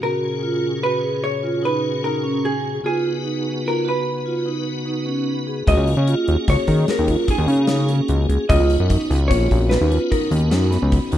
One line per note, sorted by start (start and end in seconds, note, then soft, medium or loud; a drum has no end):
0.01 2.81 A#2 medium
0.01 2.80 C#3 medium
0.01 2.81 C#4 medium
0.01 0.24 F#4 medium
0.01 2.82 F#4 medium
0.01 2.82 G#4 medium
0.01 0.83 A#4 medium
0.43 0.65 F4 medium
0.83 0.94 F#4 medium
0.83 1.23 B4 medium
1.03 1.25 G#4 medium
1.24 1.65 C#5 medium
1.43 1.54 F4 medium
1.63 1.85 D#4 medium
1.63 2.04 B4 medium
2.03 2.14 D#4 medium
2.03 2.46 A#4 medium
2.24 2.46 C#4 medium
2.45 2.73 G#4 medium
2.65 2.76 G#4 medium
2.83 5.63 C#3 medium
2.83 5.63 B3 medium
2.83 5.63 D#4 medium
2.83 3.06 F4 medium
2.83 5.64 F#4 medium
2.83 3.69 G#4 medium
2.83 5.65 B4 medium
3.25 3.47 D#4 medium
3.65 3.76 F4 medium
3.65 3.88 A#4 medium
3.85 4.07 F#4 medium
3.85 5.25 B4 medium
4.26 4.37 F4 medium
4.46 4.68 D#4 medium
4.86 4.97 D#4 medium
5.06 5.28 C#4 medium
5.28 5.65 B5 medium
5.47 5.58 G#4 medium
5.66 5.76 C#2 loud
5.66 8.45 A#3 medium
5.66 8.46 C#4 medium
5.66 5.89 F#4 medium
5.66 8.47 F#4 medium
5.66 6.49 D#5 medium
5.66 kick loud
5.66 closed hi-hat medium
5.70 8.47 G#4 medium
5.77 5.95 C#2 medium
5.87 closed hi-hat medium
5.97 6.15 C#3 medium
6.07 6.29 F4 medium
6.07 closed hi-hat medium
6.28 6.37 D#2 medium
6.28 closed hi-hat medium
6.48 6.57 C#2 medium
6.48 6.59 F#4 medium
6.48 6.91 C#5 medium
6.48 kick loud
6.48 snare soft
6.48 closed hi-hat medium
6.68 6.86 D#3 medium
6.68 6.90 G#4 medium
6.68 kick medium
6.68 closed hi-hat medium
6.88 7.27 A#4 medium
6.88 snare loud
6.88 closed hi-hat medium
6.99 7.16 D#2 medium
7.07 7.19 F4 medium
7.07 kick medium
7.07 closed hi-hat medium
7.28 7.50 D#4 medium
7.28 7.67 G#4 medium
7.28 kick loud
7.28 closed hi-hat medium
7.38 7.47 D#2 medium
7.48 8.01 C#3 medium
7.48 closed hi-hat medium
7.67 7.79 D#4 medium
7.67 snare loud
7.67 closed hi-hat medium
7.88 8.11 C#4 medium
7.88 closed hi-hat medium
8.08 8.27 C#2 medium
8.08 closed hi-hat medium
8.29 8.38 C#2 medium
8.29 8.40 G#4 medium
8.29 closed hi-hat medium
8.49 8.59 C#2 loud
8.49 11.18 B3 medium
8.49 11.18 C#4 soft
8.49 11.18 D#4 medium
8.49 8.71 F4 medium
8.49 11.18 F#4 medium
8.49 9.27 D#5 medium
8.49 kick loud
8.49 closed hi-hat medium
8.60 8.77 C#2 medium
8.70 closed hi-hat medium
8.80 8.98 F#2 medium
8.89 9.11 D#4 medium
8.89 kick medium
8.89 closed hi-hat medium
9.10 9.32 C#2 medium
9.10 snare soft
9.10 closed hi-hat medium
9.28 9.48 A#1 medium
9.28 9.40 F4 medium
9.28 9.71 C#5 medium
9.28 kick loud
9.28 snare soft
9.28 closed hi-hat medium
9.50 9.77 A#1 medium
9.50 9.72 F#4 medium
9.50 kick medium
9.50 closed hi-hat medium
9.69 10.11 B4 medium
9.69 snare loud
9.69 closed hi-hat medium
9.81 9.99 D#2 medium
9.91 10.02 F4 medium
9.91 closed hi-hat medium
10.11 10.33 D#4 medium
10.11 10.49 A#4 medium
10.11 kick medium
10.11 closed hi-hat medium
10.31 10.53 D#2 medium
10.31 closed hi-hat medium
10.51 10.78 F#2 medium
10.51 10.62 D#4 medium
10.51 snare loud
10.51 closed hi-hat medium
10.71 10.93 B3 medium
10.71 snare soft
10.71 closed hi-hat medium
10.82 11.00 C#2 medium
10.92 kick medium
10.92 closed hi-hat medium
11.11 11.18 D#2 medium
11.11 11.18 F#4 medium
11.11 closed hi-hat medium